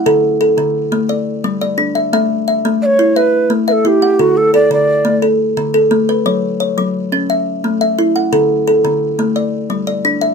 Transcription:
Already playing: kalimba F#5
0.06 kalimba D3 A4
0.41 kalimba A4
0.58 kalimba D3
0.92 kalimba A3
1.09 kalimba D5
1.44 kalimba G3
1.61 kalimba D5
1.78 kalimba D4
1.95 kalimba E5
2.13 kalimba A3 E5
2.48 kalimba E5
2.65 kalimba A3
2.82 native american-style wooden flute C#5 D5
2.99 kalimba E4
3.16 native american-style wooden flute B4, kalimba E5
3.50 kalimba A3
3.68 native american-style wooden flute B4, kalimba E5
3.72 native american-style wooden flute A4
3.85 kalimba E4, native american-style wooden flute G4
4.02 kalimba F#5
4.19 kalimba D3 A4, native american-style wooden flute F#4
4.37 native american-style wooden flute A4
4.54 kalimba A4, native american-style wooden flute D5
4.71 kalimba D3, native american-style wooden flute D5
5.05 kalimba A3
5.22 kalimba A4
5.57 kalimba D3
5.74 kalimba A4
5.91 kalimba A3
6.09 kalimba B4
6.26 kalimba F#3 C#5
6.60 kalimba C#5
6.78 kalimba F#3
7.12 kalimba C#4
7.30 kalimba E5
7.64 kalimba A3
7.81 kalimba E5
7.99 kalimba E4
8.16 kalimba F#5
8.33 kalimba D3 A4
8.67 kalimba A4
8.85 kalimba D3
9.19 kalimba A3
9.36 kalimba D5
9.70 kalimba G3
9.87 kalimba D5
10.05 kalimba D4
10.21 kalimba E5

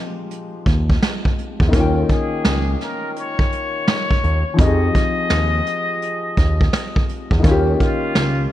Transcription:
Already playing: upright piano F3 G#3 C4 D#4 G4
0.31 closed hi-hat
0.66 analog synth bass D#2, kick, closed hi-hat
0.90 kick
1.02 snare, closed hi-hat
1.25 kick
1.38 closed hi-hat
1.60 analog synth bass E2, kick
1.68 upright piano D#3 A#3
1.73 analog synth bass D#2, upright piano C#4 F4, kick, closed hi-hat
1.80 upright piano G5
2.09 muted trumpet G#4, kick, closed hi-hat
2.45 analog synth bass C#2, snare, closed hi-hat
2.81 muted trumpet A#4, snare, closed hi-hat
3.16 muted trumpet C#5, closed hi-hat
3.39 kick
3.52 closed hi-hat
3.88 snare, closed hi-hat
4.11 kick
4.24 analog synth bass D#2, closed hi-hat
4.54 upright piano F3 C4
4.59 analog synth bass F2, upright piano D#4 G4, muted trumpet D#5, kick, closed hi-hat
4.65 upright piano G#4
4.95 kick, closed hi-hat
5.30 analog synth bass D#2, snare, closed hi-hat
5.66 closed hi-hat
6.02 closed hi-hat
6.37 analog synth bass D#2, kick, closed hi-hat
6.61 kick
6.73 snare, closed hi-hat
6.96 kick
7.09 closed hi-hat
7.31 analog synth bass E2, kick
7.40 upright piano D#3 A#3
7.44 analog synth bass D#2, upright piano C#4, kick, closed hi-hat
7.48 upright piano F4 G4
7.80 muted trumpet F4, kick, closed hi-hat
8.15 analog synth bass C#2, snare, closed hi-hat

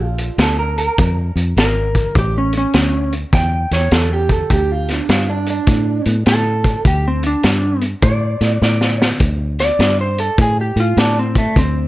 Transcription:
Already playing: fingered electric bass A#1
0.02 clean electric guitar F4
0.18 closed hi-hat
0.38 fingered electric bass D2, snare, closed hi-hat
0.42 clean electric guitar A4
0.59 clean electric guitar A#4
0.78 clean electric guitar A#4, closed hi-hat
0.98 fingered electric bass F2, kick, closed hi-hat
1.36 fingered electric bass F2, closed hi-hat
1.57 fingered electric bass G#1, electric slide guitar A#4, snare, closed hi-hat
1.95 kick, closed hi-hat
2.15 fingered electric bass A1, electric slide guitar G4, kick, closed hi-hat
2.38 electric slide guitar C#4
2.53 closed hi-hat
2.58 electric slide guitar C#4
2.73 fingered electric bass D2, snare, closed hi-hat
3.12 closed hi-hat
3.33 fingered electric bass E2, clean electric guitar G5, kick, snare, closed hi-hat
3.71 fingered electric bass E2, clean electric guitar C#5, snare, closed hi-hat
3.91 fingered electric bass E2, clean electric guitar A4, snare, closed hi-hat
4.13 clean electric guitar G4
4.29 clean electric guitar A4, kick, closed hi-hat
4.50 fingered electric bass D2, clean electric guitar G4, kick, closed hi-hat
4.72 clean electric guitar F4
4.88 snare, closed hi-hat
4.92 clean electric guitar D4
5.09 fingered electric bass G2, clean electric guitar F4, snare, closed hi-hat
5.30 clean electric guitar D4
5.46 clean electric guitar D4, closed hi-hat
5.67 fingered electric bass A2, kick, snare, closed hi-hat
6.05 fingered electric bass A2, closed hi-hat
6.26 fingered electric bass A2, electric slide guitar A4, snare, closed hi-hat
6.64 kick, closed hi-hat
6.85 fingered electric bass D2, electric slide guitar G4, kick, closed hi-hat
7.08 electric slide guitar C4
7.23 electric slide guitar D4, closed hi-hat
7.43 fingered electric bass G2, snare, closed hi-hat
7.81 closed hi-hat
8.02 fingered electric bass A2, clean electric guitar D5, kick, closed hi-hat
8.41 fingered electric bass A2, snare, closed hi-hat
8.62 fingered electric bass A2, clean electric guitar D5, snare
8.81 snare
9.02 snare
9.20 fingered electric bass D2, kick, closed hi-hat
9.59 electric slide guitar D5, snare, closed hi-hat
9.79 fingered electric bass G2, snare, closed hi-hat
10.01 electric slide guitar C5
10.18 electric slide guitar A4, closed hi-hat
10.38 fingered electric bass A2, electric slide guitar G#4, kick, closed hi-hat
10.61 electric slide guitar G4
10.76 fingered electric bass A2, closed hi-hat
10.80 electric slide guitar F4
10.97 fingered electric bass A2, electric slide guitar D4, snare, closed hi-hat
11.19 electric slide guitar C4
11.35 electric slide guitar A3, kick, closed hi-hat
11.56 fingered electric bass D2, electric slide guitar C4, kick, closed hi-hat

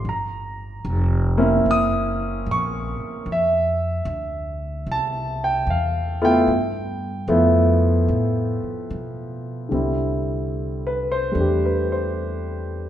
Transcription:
0.05 upright bass G1
0.09 grand piano A#5
0.85 upright bass F1
1.37 grand piano A#3 C4 C#4 E4
1.66 upright bass F#1
1.71 grand piano D#6
2.46 upright bass A#1
2.51 grand piano C#6
3.00 muted upright bass stroke
3.26 upright bass F2
3.32 grand piano E5
4.05 upright bass D2
4.86 upright bass C2
4.92 grand piano A5
5.44 grand piano G5
5.67 upright bass E2, grand piano F5
6.22 grand piano A3 B3 E4 F4 G5
6.47 upright bass G2
7.28 upright bass F2, grand piano F3 A3 B3 E4
8.08 upright bass A2
8.63 muted upright bass stroke
8.90 upright bass B2
9.69 upright bass C2, grand piano D3 G3 C4
9.74 grand piano E4
10.87 grand piano B4
11.12 grand piano C5
11.32 upright bass E2, grand piano G3 A3 D4
11.41 grand piano G4
11.66 grand piano B4
11.92 grand piano C5

